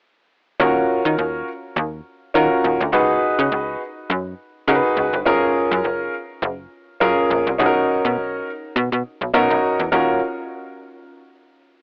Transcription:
0.60 fm bass D#2, grand piano C#4 F4 F#4 A#4
1.05 fm bass D#3
1.18 fm bass D#2
1.76 fm bass D#2
2.34 fm bass D#3, grand piano C#4 F4 F#4 A#4
2.64 fm bass D#2
2.81 fm bass D2
2.92 fm bass C#2, grand piano D#4 F#4 G#4 B4
3.39 fm bass C#3
3.52 fm bass C#2
4.10 fm bass F#2
4.67 fm bass C#3, grand piano D#4 F#4 G#4 A#4
4.75 grand piano B4
4.96 fm bass C#2
5.13 fm bass G1
5.26 fm bass F#1, grand piano C#4 F4 G#4 A#4
5.71 fm bass F#2
5.84 fm bass F#1
6.42 fm bass F#1
7.00 fm bass F#2, grand piano C#4 F4 G#4 A#4
7.30 fm bass A#1
7.47 fm bass C2
7.59 fm bass B1, grand piano C#4 D#4 F#4 G#4
7.66 grand piano A#4
8.05 fm bass B2
8.18 fm bass B1
8.76 fm bass B2
8.92 fm bass B2
9.21 fm bass B1
9.34 fm bass B2, grand piano C#4 D#4 F#4 A#4
9.50 fm bass B1
9.79 fm bass E2
9.92 fm bass D#2, grand piano C#4 F4 F#4 A#4

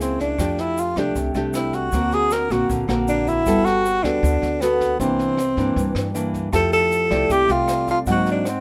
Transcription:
Already playing: upright bass C#2, nylon-string guitar C#3 A#3 E4 G#4
0.00 tenor saxophone C4, snare, shaker
0.19 tenor saxophone D4, kick, snare, shaker
0.38 upright bass F2, nylon-string guitar F3 A3 D4 G4, kick, cross-stick, snare, shaker
0.58 tenor saxophone E4, snare, shaker
0.77 tenor saxophone F4, snare, shaker
0.96 upright bass C2, nylon-string guitar A3 D4 G4, tenor saxophone D4, kick, cross-stick, snare, shaker
1.15 upright bass C2, nylon-string guitar C3, kick, snare, shaker
1.35 upright bass C2, nylon-string guitar A3 D4 G4, snare, shaker
1.53 tenor saxophone E4, cross-stick, snare, shaker
1.73 tenor saxophone F#4, kick, snare, shaker
1.92 upright bass D2, nylon-string guitar D3 A#3 C4 F#4, kick, snare, shaker
2.12 tenor saxophone G#4, snare, shaker
2.31 tenor saxophone A#4, cross-stick, snare, shaker
2.50 upright bass A#1, nylon-string guitar A#3 C4 F#4, tenor saxophone F#4, kick, snare, shaker
2.70 upright bass A#1, nylon-string guitar D3, kick, snare, shaker
2.88 upright bass A#1, nylon-string guitar A#3 C4 F#4, cross-stick, snare, shaker
3.08 tenor saxophone D4, snare, shaker
3.27 tenor saxophone E4, kick, snare, shaker
3.46 upright bass G1, nylon-string guitar G3 B3 F#4 A4, kick, cross-stick, snare, shaker
3.65 tenor saxophone F#4, snare, shaker
3.85 snare, shaker
4.04 upright bass D2, nylon-string guitar B3 F#4 A4, tenor saxophone D4, kick, cross-stick, snare, shaker
4.23 upright bass D2, nylon-string guitar D3, kick, snare, shaker
4.42 upright bass D2, snare, shaker
4.61 tenor saxophone B3, nylon-string guitar B3 F#4 A4, cross-stick, snare, shaker
4.80 kick, snare, shaker
5.00 upright bass C2, nylon-string guitar C3 E3 A#3 D4, tenor saxophone C4, kick, snare, shaker
5.19 snare, shaker
5.38 cross-stick, snare, shaker
5.57 upright bass G2, nylon-string guitar E3 A#3 D4, kick, snare, shaker
5.76 nylon-string guitar G2, upright bass G2, kick, snare, shaker
5.95 upright bass G2, cross-stick, snare, shaker
6.14 nylon-string guitar E3 A#3 D4, snare, shaker
6.34 kick, snare, shaker
6.53 upright bass F2, nylon-string guitar F3 A3 E4 G4, tenor saxophone A4, grand piano A5, kick, cross-stick, snare, shaker
6.72 tenor saxophone A4, snare, shaker
6.91 snare, shaker
7.11 upright bass C2, nylon-string guitar A3 E4 G4, grand piano D5, kick, cross-stick, snare, shaker
7.30 upright bass C2, nylon-string guitar C3, tenor saxophone G4, kick, snare, shaker
7.49 upright bass C2, nylon-string guitar A3 G4, tenor saxophone F4, snare, shaker
7.68 cross-stick, snare, shaker
7.88 tenor saxophone F4, kick, snare, shaker
8.06 upright bass G#2, nylon-string guitar G#2 F#3 A#3 C4, grand piano F#5, kick, snare, shaker
8.11 tenor saxophone F#4
8.26 snare, shaker
8.31 tenor saxophone D4
8.45 grand piano C5, cross-stick, snare, shaker
8.49 tenor saxophone C4

